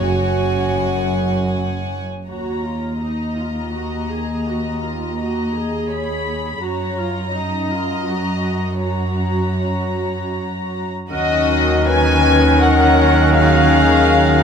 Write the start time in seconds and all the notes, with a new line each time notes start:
Already playing: C#5
0.01 F#1 F#2 F#4 F#5 G#5
2.27 D#2 F#4 C#5 A#5
2.64 F4
3.01 D#4 D#5 A#5
3.38 F4
3.75 F#4
4.11 G#4
4.48 F#4
4.84 F4
5.19 F#4 D#5
5.56 G#4
5.90 C#5 B5
6.62 F#2 F#4 C#5 A#5
6.98 F4
7.34 D#4 D#5
7.71 F4
8.07 F#4 A#5
8.81 F#4 C#5 A#5
11.10 D#2 D#3 F#3 C#4 F#4 A#4 D#5 F#6
11.88 B4 G#5
12.61 A#4 F#5
13.34 G#4 F5